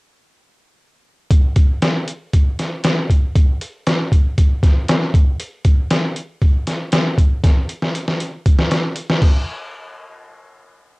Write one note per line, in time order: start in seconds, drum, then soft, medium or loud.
1.31 kick loud
1.31 closed hi-hat medium
1.56 kick medium
1.56 closed hi-hat medium
1.82 snare medium
1.82 closed hi-hat medium
2.08 closed hi-hat medium
2.33 kick medium
2.33 closed hi-hat medium
2.59 snare soft
2.59 closed hi-hat medium
2.84 snare loud
2.84 closed hi-hat medium
3.10 kick medium
3.10 closed hi-hat medium
3.35 kick loud
3.35 closed hi-hat medium
3.61 closed hi-hat medium
3.87 snare medium
3.87 closed hi-hat medium
4.12 kick medium
4.12 closed hi-hat medium
4.38 kick medium
4.38 closed hi-hat medium
4.63 kick medium
4.63 snare soft
4.63 closed hi-hat medium
4.89 snare loud
4.89 closed hi-hat medium
5.14 kick loud
5.14 closed hi-hat medium
5.40 closed hi-hat medium
5.65 kick medium
5.65 closed hi-hat medium
5.91 snare medium
5.91 closed hi-hat medium
6.16 closed hi-hat medium
6.42 kick medium
6.42 closed hi-hat medium
6.67 snare soft
6.67 closed hi-hat medium
6.92 snare loud
6.92 closed hi-hat medium
7.18 kick medium
7.18 closed hi-hat medium
7.44 kick medium
7.44 snare soft
7.44 closed hi-hat medium
7.69 closed hi-hat medium
7.82 snare soft
7.95 closed hi-hat medium
8.08 snare soft
8.20 closed hi-hat medium
8.46 kick medium
8.46 closed hi-hat medium
8.59 snare medium
8.71 snare medium
8.71 closed hi-hat medium
8.96 closed hi-hat medium
9.10 snare medium
9.22 kick medium
9.22 crash medium